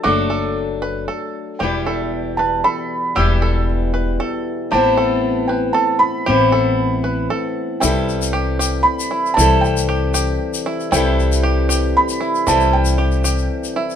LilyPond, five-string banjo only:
\new Staff \with { instrumentName = "Five-string banjo" } { \time 3/4 \key a \dorian \tempo 4 = 116 fis'8 a'4 b'8 a'4 | g'8 a'4 b'8 a'4 | g'8 a'4 b'8 a'4 | g'8 a'4 b'8 a'4 |
g'8 a'4 b'8 a'4 | \key c \lydian e'4 g'8 g'4 e'8 | e'4 g'8 g'4 e'8 | e'4 g'8 g'4 e'8 |
e'4 g'8 g'4 e'8 | }